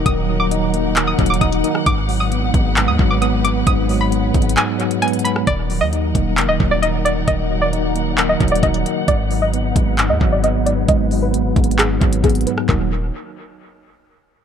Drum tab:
HH |x-----------------------x-----------x-----------x-----------x---x---x---x-----x-----x-----------|x-----------o-----------x-----------x-----------x-----------------------x-----------x-----------|x-----------o-----------x-----------x---x---x---x-----------x-----x-----x--x--x--x--x-----------|x-----------o-----------x-----------x-----------x-----------------------x-----------x-----------|
CP |------------------------------------------------x-----------------------------------------------|------------------------------------------------x-----------------------------------------------|------------------------------------------------x-----------------------------------------------|------------------------------------------------x-----------------------------------------------|
SD |------------------------------------------------------------------------------------------r-----|------------------------------------------------------------------------------------------------|------------------------------------------------------------------------------------------r-----|------------------------------------------------------------------------------------------------|
FT |------------------------------------------------------------------------------------------------|------------------------------------------------------------------------------------------------|------------------------------------------------------------------------------------------------|------------------------------------------------------------------------------------------------|
BD |o-----------------------------------------------------------o-----------o-----------------------|o-----------------------------------o-----------------------o-----------------------------------|o-----------------------------------o-----------------------------------------------------------|o-----------------------------------o-----------------------o-----------------------------------|

HH |x-----------------------x-----------x-----------x-----------x---x---x---x-----x-----x-----------|x-----------o-----------x-----------x-----------x-----------------------x-----------x-----------|x-----------o-----------x-----------x---x---x---x-----------x-----x-----x--x--x--x--x-----------|------------------------------------------------------------------------------------------------|
CP |------------------------------------------------x-----------------------------------------------|------------------------------------------------x-----------------------------------------------|------------------------------------------------x-----------------------------------------------|x-----------------------------------------------------------------------------------------------|
SD |------------------------------------------------------------------------------------------------|------------------------------------------------------------------------------------------------|------------------------------------------------------------------------------------------r-----|------------------------------------------------------------------------------------------------|
FT |------------------------------------------------------------------------------------------------|------------------------------------------------------------------------------------------------|------------------------------------------------------------------------------------------------|o-----------------------------------------------------------------------------------------------|
BD |o-----------------------------------------------------------o-----------o-----------------------|o-----------------------------------o-----------------------o-----------------------------------|o-----------------------------------o-----------------------o-----------o-----------------------|o-----------------------------------------------------------------------------------------------|